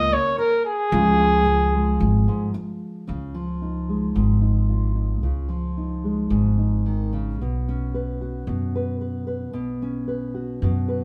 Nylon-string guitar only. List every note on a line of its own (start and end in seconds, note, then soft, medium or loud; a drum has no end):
0.00 0.90 A#3 medium
0.00 0.42 C#4 medium
0.00 0.90 A#4 medium
0.12 0.38 C#3 medium
0.38 muted nylon-string guitar stroke medium
0.92 1.44 C#3 medium
0.92 3.05 F3 medium
0.92 1.73 G#3 medium
0.92 1.19 F4 medium
1.20 3.04 F4 medium
1.44 muted nylon-string guitar stroke medium
1.74 3.88 G#3 medium
2.28 2.53 G#2 medium
2.54 muted nylon-string guitar stroke medium
3.07 3.34 C#3 medium
3.35 5.20 F3 soft
3.62 4.40 D#4 soft
3.89 6.03 G#3 soft
4.15 5.20 G#2 medium
4.42 4.95 D#4 soft
4.69 7.39 F4 soft
4.96 5.19 D#4 soft
5.23 5.50 C#3 medium
5.49 6.84 F3 soft
5.77 6.57 D#4 soft
6.04 7.39 G#3 soft
6.31 7.35 G#2 medium
6.58 7.35 D#4 medium
6.86 7.12 D#3 soft
7.13 7.39 C#3 medium
7.41 8.47 B2 medium
7.68 9.56 C#4 soft
7.94 8.74 B4 medium
8.21 9.52 F#4 medium
8.47 9.52 B2 medium
8.75 9.00 B4 medium
9.01 9.26 B4 soft
9.27 9.51 B4 medium
9.53 10.62 B2 medium
9.82 11.04 C#4 soft
10.08 10.87 B4 medium
10.34 11.04 F#4 soft
10.63 11.04 B2 medium
10.88 11.04 B4 medium